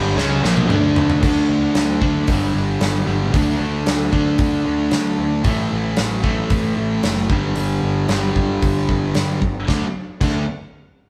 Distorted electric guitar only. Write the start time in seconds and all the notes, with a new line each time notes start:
Already playing: G2 D3 G3
0.17 C#3 G#3 C#4
0.43 A#2 F3 A#3
0.69 D3 A3 D4
1.21 D3 A3 D4
2.00 D3 A3 D4
2.27 G2 D3 G3
3.06 G2 D3 G3
3.32 D3 A3 D4
4.12 D3 A3 D4
5.44 A2 E3 A3
6.22 A2 E3 A3
7.28 G2 D3 G3
8.07 G2 D3 G3
9.67 D3 A3 D4
10.21 D3 A3 D4